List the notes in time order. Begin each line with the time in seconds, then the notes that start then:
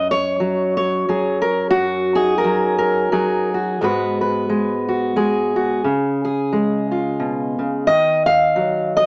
Already playing: F#2 D#5
0.11 C#5
0.40 F#3
0.77 C#5
1.09 F#3 G#4
1.42 A#4
1.71 F#4
1.75 F#2
2.15 D#4 G#4
2.38 A#4
2.44 F#3
2.78 A#4
3.12 F#3 G#4
3.54 F#4
3.81 G#2 G#3 B3 F#4 B4
4.21 B4
4.49 G#3
4.88 F#4
5.16 G#3 G#4
5.56 F#4
5.84 C#3
6.25 G#4
6.52 G#3
6.91 F4
7.20 B2
7.59 C#3
7.87 D#3 D#5
8.26 F5
8.56 F#3
8.97 D#5